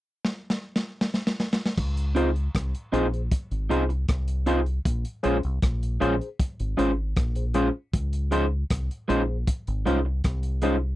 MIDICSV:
0, 0, Header, 1, 6, 480
1, 0, Start_track
1, 0, Key_signature, -5, "major"
1, 0, Tempo, 769625
1, 1107, Time_signature, 4, 2, 24, 8
1, 6833, End_track
2, 0, Start_track
2, 0, Title_t, "Tine electric piano"
2, 0, Program_c, 0, 4
2, 1348, Note_on_c, 0, 63, 80
2, 1348, Note_on_c, 0, 65, 76
2, 1349, Note_on_c, 0, 68, 80
2, 1351, Note_on_c, 0, 72, 95
2, 1430, Note_off_c, 0, 65, 0
2, 1431, Note_off_c, 0, 63, 0
2, 1431, Note_off_c, 0, 68, 0
2, 1432, Note_off_c, 0, 72, 0
2, 1827, Note_on_c, 0, 63, 92
2, 1830, Note_on_c, 0, 65, 80
2, 1830, Note_on_c, 0, 72, 94
2, 1831, Note_on_c, 0, 68, 84
2, 1910, Note_off_c, 0, 63, 0
2, 1911, Note_off_c, 0, 65, 0
2, 1911, Note_off_c, 0, 72, 0
2, 1912, Note_off_c, 0, 68, 0
2, 1955, Note_on_c, 0, 68, 36
2, 1955, Note_on_c, 0, 72, 42
2, 1999, Note_off_c, 0, 72, 0
2, 2000, Note_off_c, 0, 68, 0
2, 2310, Note_on_c, 0, 63, 82
2, 2312, Note_on_c, 0, 65, 68
2, 2312, Note_on_c, 0, 68, 71
2, 2314, Note_on_c, 0, 72, 90
2, 2392, Note_off_c, 0, 63, 0
2, 2392, Note_off_c, 0, 65, 0
2, 2393, Note_off_c, 0, 68, 0
2, 2393, Note_off_c, 0, 72, 0
2, 2787, Note_on_c, 0, 63, 81
2, 2787, Note_on_c, 0, 65, 83
2, 2789, Note_on_c, 0, 68, 79
2, 2790, Note_on_c, 0, 72, 96
2, 2870, Note_off_c, 0, 63, 0
2, 2870, Note_off_c, 0, 65, 0
2, 2871, Note_off_c, 0, 68, 0
2, 2871, Note_off_c, 0, 72, 0
2, 3263, Note_on_c, 0, 61, 84
2, 3263, Note_on_c, 0, 65, 79
2, 3265, Note_on_c, 0, 68, 75
2, 3267, Note_on_c, 0, 72, 91
2, 3347, Note_off_c, 0, 65, 0
2, 3348, Note_off_c, 0, 61, 0
2, 3348, Note_off_c, 0, 68, 0
2, 3350, Note_off_c, 0, 72, 0
2, 3748, Note_on_c, 0, 61, 102
2, 3748, Note_on_c, 0, 65, 84
2, 3749, Note_on_c, 0, 68, 87
2, 3749, Note_on_c, 0, 72, 112
2, 3830, Note_off_c, 0, 61, 0
2, 3830, Note_off_c, 0, 65, 0
2, 3831, Note_off_c, 0, 68, 0
2, 3831, Note_off_c, 0, 72, 0
2, 4224, Note_on_c, 0, 61, 75
2, 4225, Note_on_c, 0, 65, 72
2, 4226, Note_on_c, 0, 68, 66
2, 4227, Note_on_c, 0, 72, 84
2, 4308, Note_off_c, 0, 61, 0
2, 4309, Note_off_c, 0, 65, 0
2, 4309, Note_off_c, 0, 68, 0
2, 4310, Note_off_c, 0, 72, 0
2, 4591, Note_on_c, 0, 68, 41
2, 4593, Note_on_c, 0, 72, 46
2, 4637, Note_off_c, 0, 68, 0
2, 4638, Note_off_c, 0, 72, 0
2, 4707, Note_on_c, 0, 61, 78
2, 4707, Note_on_c, 0, 65, 84
2, 4708, Note_on_c, 0, 68, 72
2, 4708, Note_on_c, 0, 72, 92
2, 4789, Note_off_c, 0, 65, 0
2, 4790, Note_off_c, 0, 61, 0
2, 4790, Note_off_c, 0, 68, 0
2, 4790, Note_off_c, 0, 72, 0
2, 5188, Note_on_c, 0, 63, 83
2, 5188, Note_on_c, 0, 65, 77
2, 5189, Note_on_c, 0, 68, 80
2, 5190, Note_on_c, 0, 72, 96
2, 5270, Note_off_c, 0, 63, 0
2, 5270, Note_off_c, 0, 65, 0
2, 5270, Note_off_c, 0, 68, 0
2, 5271, Note_off_c, 0, 72, 0
2, 5667, Note_on_c, 0, 63, 90
2, 5669, Note_on_c, 0, 65, 83
2, 5670, Note_on_c, 0, 72, 103
2, 5672, Note_on_c, 0, 68, 82
2, 5750, Note_off_c, 0, 63, 0
2, 5750, Note_off_c, 0, 65, 0
2, 5751, Note_off_c, 0, 72, 0
2, 5752, Note_off_c, 0, 68, 0
2, 6150, Note_on_c, 0, 63, 80
2, 6151, Note_on_c, 0, 65, 70
2, 6153, Note_on_c, 0, 68, 68
2, 6153, Note_on_c, 0, 72, 89
2, 6231, Note_off_c, 0, 63, 0
2, 6231, Note_off_c, 0, 65, 0
2, 6232, Note_off_c, 0, 68, 0
2, 6233, Note_off_c, 0, 72, 0
2, 6629, Note_on_c, 0, 63, 83
2, 6631, Note_on_c, 0, 65, 78
2, 6631, Note_on_c, 0, 72, 94
2, 6632, Note_on_c, 0, 68, 75
2, 6710, Note_off_c, 0, 63, 0
2, 6711, Note_off_c, 0, 65, 0
2, 6711, Note_off_c, 0, 72, 0
2, 6712, Note_off_c, 0, 68, 0
2, 6833, End_track
3, 0, Start_track
3, 0, Title_t, "Clean electric guitar"
3, 0, Program_c, 1, 27
3, 1340, Note_on_c, 1, 60, 83
3, 1345, Note_on_c, 1, 65, 79
3, 1349, Note_on_c, 1, 68, 86
3, 1353, Note_on_c, 1, 72, 83
3, 1420, Note_off_c, 1, 60, 0
3, 1422, Note_off_c, 1, 65, 0
3, 1425, Note_off_c, 1, 68, 0
3, 1426, Note_off_c, 1, 72, 0
3, 1823, Note_on_c, 1, 60, 82
3, 1827, Note_on_c, 1, 65, 84
3, 1832, Note_on_c, 1, 68, 82
3, 1835, Note_on_c, 1, 72, 85
3, 1902, Note_off_c, 1, 60, 0
3, 1903, Note_off_c, 1, 65, 0
3, 1906, Note_off_c, 1, 68, 0
3, 1908, Note_off_c, 1, 72, 0
3, 2304, Note_on_c, 1, 60, 74
3, 2308, Note_on_c, 1, 65, 85
3, 2311, Note_on_c, 1, 68, 96
3, 2315, Note_on_c, 1, 72, 95
3, 2382, Note_off_c, 1, 60, 0
3, 2384, Note_off_c, 1, 65, 0
3, 2385, Note_off_c, 1, 68, 0
3, 2387, Note_off_c, 1, 72, 0
3, 2784, Note_on_c, 1, 60, 75
3, 2788, Note_on_c, 1, 65, 91
3, 2792, Note_on_c, 1, 68, 94
3, 2794, Note_on_c, 1, 72, 82
3, 2862, Note_off_c, 1, 60, 0
3, 2864, Note_off_c, 1, 65, 0
3, 2866, Note_off_c, 1, 68, 0
3, 2867, Note_off_c, 1, 72, 0
3, 3265, Note_on_c, 1, 56, 77
3, 3270, Note_on_c, 1, 61, 82
3, 3273, Note_on_c, 1, 65, 86
3, 3276, Note_on_c, 1, 72, 81
3, 3342, Note_off_c, 1, 56, 0
3, 3345, Note_off_c, 1, 61, 0
3, 3346, Note_off_c, 1, 65, 0
3, 3348, Note_off_c, 1, 72, 0
3, 3744, Note_on_c, 1, 56, 77
3, 3748, Note_on_c, 1, 61, 81
3, 3752, Note_on_c, 1, 65, 86
3, 3755, Note_on_c, 1, 72, 83
3, 3822, Note_off_c, 1, 56, 0
3, 3824, Note_off_c, 1, 61, 0
3, 3826, Note_off_c, 1, 65, 0
3, 3827, Note_off_c, 1, 72, 0
3, 4223, Note_on_c, 1, 56, 75
3, 4228, Note_on_c, 1, 61, 82
3, 4231, Note_on_c, 1, 65, 84
3, 4235, Note_on_c, 1, 72, 93
3, 4301, Note_off_c, 1, 56, 0
3, 4304, Note_off_c, 1, 61, 0
3, 4305, Note_off_c, 1, 65, 0
3, 4307, Note_off_c, 1, 72, 0
3, 4705, Note_on_c, 1, 56, 80
3, 4710, Note_on_c, 1, 61, 88
3, 4713, Note_on_c, 1, 65, 77
3, 4716, Note_on_c, 1, 72, 96
3, 4782, Note_off_c, 1, 56, 0
3, 4785, Note_off_c, 1, 61, 0
3, 4786, Note_off_c, 1, 65, 0
3, 4788, Note_off_c, 1, 72, 0
3, 5184, Note_on_c, 1, 56, 78
3, 5188, Note_on_c, 1, 61, 84
3, 5192, Note_on_c, 1, 65, 87
3, 5195, Note_on_c, 1, 72, 103
3, 5261, Note_off_c, 1, 56, 0
3, 5264, Note_off_c, 1, 61, 0
3, 5266, Note_off_c, 1, 65, 0
3, 5267, Note_off_c, 1, 72, 0
3, 5663, Note_on_c, 1, 56, 89
3, 5670, Note_on_c, 1, 61, 90
3, 5672, Note_on_c, 1, 65, 84
3, 5675, Note_on_c, 1, 72, 84
3, 5741, Note_off_c, 1, 56, 0
3, 5744, Note_off_c, 1, 61, 0
3, 5746, Note_off_c, 1, 65, 0
3, 5747, Note_off_c, 1, 72, 0
3, 6147, Note_on_c, 1, 56, 81
3, 6151, Note_on_c, 1, 61, 86
3, 6154, Note_on_c, 1, 65, 84
3, 6159, Note_on_c, 1, 72, 97
3, 6223, Note_off_c, 1, 56, 0
3, 6225, Note_off_c, 1, 61, 0
3, 6227, Note_off_c, 1, 65, 0
3, 6229, Note_off_c, 1, 72, 0
3, 6623, Note_on_c, 1, 56, 80
3, 6628, Note_on_c, 1, 61, 83
3, 6631, Note_on_c, 1, 65, 94
3, 6634, Note_on_c, 1, 72, 84
3, 6701, Note_off_c, 1, 56, 0
3, 6704, Note_off_c, 1, 61, 0
3, 6705, Note_off_c, 1, 65, 0
3, 6706, Note_off_c, 1, 72, 0
3, 6833, End_track
4, 0, Start_track
4, 0, Title_t, "Fingered electric bass"
4, 0, Program_c, 2, 33
4, 1109, Note_on_c, 2, 37, 101
4, 1540, Note_off_c, 2, 37, 0
4, 1589, Note_on_c, 2, 36, 80
4, 1698, Note_off_c, 2, 36, 0
4, 1829, Note_on_c, 2, 34, 80
4, 2044, Note_off_c, 2, 34, 0
4, 2191, Note_on_c, 2, 32, 77
4, 2296, Note_off_c, 2, 32, 0
4, 2308, Note_on_c, 2, 36, 79
4, 2524, Note_off_c, 2, 36, 0
4, 2551, Note_on_c, 2, 36, 85
4, 2981, Note_off_c, 2, 36, 0
4, 3028, Note_on_c, 2, 34, 100
4, 3138, Note_off_c, 2, 34, 0
4, 3275, Note_on_c, 2, 34, 72
4, 3381, Note_off_c, 2, 34, 0
4, 3396, Note_on_c, 2, 36, 76
4, 3499, Note_off_c, 2, 36, 0
4, 3511, Note_on_c, 2, 34, 83
4, 3725, Note_off_c, 2, 34, 0
4, 3754, Note_on_c, 2, 34, 83
4, 3861, Note_off_c, 2, 34, 0
4, 4116, Note_on_c, 2, 32, 70
4, 4219, Note_off_c, 2, 32, 0
4, 4233, Note_on_c, 2, 32, 82
4, 4446, Note_off_c, 2, 32, 0
4, 4470, Note_on_c, 2, 34, 81
4, 4795, Note_off_c, 2, 34, 0
4, 4951, Note_on_c, 2, 37, 100
4, 5380, Note_off_c, 2, 37, 0
4, 5430, Note_on_c, 2, 36, 84
4, 5539, Note_off_c, 2, 36, 0
4, 5674, Note_on_c, 2, 34, 88
4, 5886, Note_off_c, 2, 34, 0
4, 6036, Note_on_c, 2, 32, 81
4, 6139, Note_off_c, 2, 32, 0
4, 6155, Note_on_c, 2, 36, 83
4, 6367, Note_off_c, 2, 36, 0
4, 6392, Note_on_c, 2, 36, 91
4, 6821, Note_off_c, 2, 36, 0
4, 6833, End_track
5, 0, Start_track
5, 0, Title_t, "Muted clean electric guitar strokes"
5, 2427, Note_on_c, 9, 29, 41
5, 2490, Note_off_c, 9, 29, 0
5, 6269, Note_on_c, 9, 29, 38
5, 6331, Note_off_c, 9, 29, 0
5, 6833, End_track
6, 0, Start_track
6, 0, Title_t, "Drums"
6, 153, Note_on_c, 9, 38, 58
6, 215, Note_off_c, 9, 38, 0
6, 312, Note_on_c, 9, 38, 62
6, 374, Note_off_c, 9, 38, 0
6, 472, Note_on_c, 9, 38, 71
6, 535, Note_off_c, 9, 38, 0
6, 631, Note_on_c, 9, 38, 73
6, 693, Note_off_c, 9, 38, 0
6, 710, Note_on_c, 9, 38, 69
6, 772, Note_off_c, 9, 38, 0
6, 791, Note_on_c, 9, 38, 76
6, 854, Note_off_c, 9, 38, 0
6, 872, Note_on_c, 9, 38, 74
6, 934, Note_off_c, 9, 38, 0
6, 953, Note_on_c, 9, 38, 89
6, 1015, Note_off_c, 9, 38, 0
6, 1033, Note_on_c, 9, 38, 79
6, 1095, Note_off_c, 9, 38, 0
6, 1107, Note_on_c, 9, 36, 110
6, 1107, Note_on_c, 9, 49, 82
6, 1170, Note_off_c, 9, 36, 0
6, 1170, Note_off_c, 9, 49, 0
6, 1229, Note_on_c, 9, 42, 58
6, 1291, Note_off_c, 9, 42, 0
6, 1348, Note_on_c, 9, 42, 69
6, 1410, Note_off_c, 9, 42, 0
6, 1471, Note_on_c, 9, 42, 35
6, 1533, Note_off_c, 9, 42, 0
6, 1589, Note_on_c, 9, 36, 99
6, 1589, Note_on_c, 9, 42, 80
6, 1596, Note_on_c, 9, 37, 112
6, 1651, Note_off_c, 9, 36, 0
6, 1652, Note_off_c, 9, 42, 0
6, 1659, Note_off_c, 9, 37, 0
6, 1713, Note_on_c, 9, 42, 45
6, 1775, Note_off_c, 9, 42, 0
6, 1831, Note_on_c, 9, 42, 71
6, 1893, Note_off_c, 9, 42, 0
6, 1956, Note_on_c, 9, 42, 31
6, 2018, Note_off_c, 9, 42, 0
6, 2067, Note_on_c, 9, 42, 97
6, 2068, Note_on_c, 9, 36, 109
6, 2129, Note_off_c, 9, 42, 0
6, 2130, Note_off_c, 9, 36, 0
6, 2192, Note_on_c, 9, 42, 44
6, 2254, Note_off_c, 9, 42, 0
6, 2314, Note_on_c, 9, 42, 58
6, 2377, Note_off_c, 9, 42, 0
6, 2432, Note_on_c, 9, 42, 33
6, 2494, Note_off_c, 9, 42, 0
6, 2547, Note_on_c, 9, 42, 73
6, 2549, Note_on_c, 9, 36, 103
6, 2553, Note_on_c, 9, 37, 103
6, 2610, Note_off_c, 9, 42, 0
6, 2611, Note_off_c, 9, 36, 0
6, 2616, Note_off_c, 9, 37, 0
6, 2667, Note_on_c, 9, 42, 52
6, 2730, Note_off_c, 9, 42, 0
6, 2785, Note_on_c, 9, 42, 71
6, 2847, Note_off_c, 9, 42, 0
6, 2908, Note_on_c, 9, 42, 30
6, 2970, Note_off_c, 9, 42, 0
6, 3027, Note_on_c, 9, 42, 85
6, 3028, Note_on_c, 9, 36, 114
6, 3090, Note_off_c, 9, 36, 0
6, 3090, Note_off_c, 9, 42, 0
6, 3148, Note_on_c, 9, 42, 55
6, 3210, Note_off_c, 9, 42, 0
6, 3265, Note_on_c, 9, 42, 63
6, 3328, Note_off_c, 9, 42, 0
6, 3388, Note_on_c, 9, 42, 31
6, 3451, Note_off_c, 9, 42, 0
6, 3507, Note_on_c, 9, 42, 81
6, 3508, Note_on_c, 9, 36, 111
6, 3514, Note_on_c, 9, 37, 107
6, 3569, Note_off_c, 9, 42, 0
6, 3571, Note_off_c, 9, 36, 0
6, 3576, Note_off_c, 9, 37, 0
6, 3635, Note_on_c, 9, 42, 47
6, 3697, Note_off_c, 9, 42, 0
6, 3753, Note_on_c, 9, 42, 73
6, 3815, Note_off_c, 9, 42, 0
6, 3875, Note_on_c, 9, 42, 30
6, 3937, Note_off_c, 9, 42, 0
6, 3988, Note_on_c, 9, 36, 111
6, 3989, Note_on_c, 9, 42, 100
6, 4051, Note_off_c, 9, 36, 0
6, 4052, Note_off_c, 9, 42, 0
6, 4113, Note_on_c, 9, 42, 48
6, 4176, Note_off_c, 9, 42, 0
6, 4233, Note_on_c, 9, 42, 69
6, 4295, Note_off_c, 9, 42, 0
6, 4466, Note_on_c, 9, 42, 74
6, 4469, Note_on_c, 9, 36, 103
6, 4473, Note_on_c, 9, 37, 109
6, 4529, Note_off_c, 9, 42, 0
6, 4531, Note_off_c, 9, 36, 0
6, 4535, Note_off_c, 9, 37, 0
6, 4586, Note_on_c, 9, 42, 46
6, 4649, Note_off_c, 9, 42, 0
6, 4703, Note_on_c, 9, 42, 64
6, 4766, Note_off_c, 9, 42, 0
6, 4949, Note_on_c, 9, 36, 111
6, 4949, Note_on_c, 9, 42, 94
6, 5011, Note_off_c, 9, 36, 0
6, 5011, Note_off_c, 9, 42, 0
6, 5069, Note_on_c, 9, 42, 56
6, 5132, Note_off_c, 9, 42, 0
6, 5187, Note_on_c, 9, 42, 69
6, 5250, Note_off_c, 9, 42, 0
6, 5427, Note_on_c, 9, 42, 83
6, 5429, Note_on_c, 9, 36, 106
6, 5434, Note_on_c, 9, 37, 102
6, 5490, Note_off_c, 9, 42, 0
6, 5492, Note_off_c, 9, 36, 0
6, 5496, Note_off_c, 9, 37, 0
6, 5556, Note_on_c, 9, 42, 42
6, 5619, Note_off_c, 9, 42, 0
6, 5673, Note_on_c, 9, 42, 72
6, 5735, Note_off_c, 9, 42, 0
6, 5909, Note_on_c, 9, 36, 109
6, 5909, Note_on_c, 9, 42, 103
6, 5971, Note_off_c, 9, 36, 0
6, 5971, Note_off_c, 9, 42, 0
6, 6033, Note_on_c, 9, 42, 46
6, 6095, Note_off_c, 9, 42, 0
6, 6153, Note_on_c, 9, 42, 59
6, 6216, Note_off_c, 9, 42, 0
6, 6386, Note_on_c, 9, 42, 74
6, 6389, Note_on_c, 9, 36, 94
6, 6392, Note_on_c, 9, 37, 94
6, 6449, Note_off_c, 9, 42, 0
6, 6452, Note_off_c, 9, 36, 0
6, 6455, Note_off_c, 9, 37, 0
6, 6504, Note_on_c, 9, 42, 47
6, 6567, Note_off_c, 9, 42, 0
6, 6621, Note_on_c, 9, 42, 65
6, 6684, Note_off_c, 9, 42, 0
6, 6833, End_track
0, 0, End_of_file